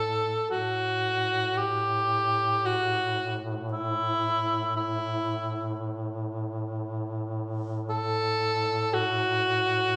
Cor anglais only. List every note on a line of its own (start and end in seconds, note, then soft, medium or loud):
0.00 0.47 A4 loud
0.51 1.59 F#4 medium
1.57 2.67 G4 medium
2.66 3.46 F#4 medium
3.73 4.73 E4 medium
4.77 5.77 E4 medium
7.90 8.95 A4 loud
8.94 9.96 F#4 loud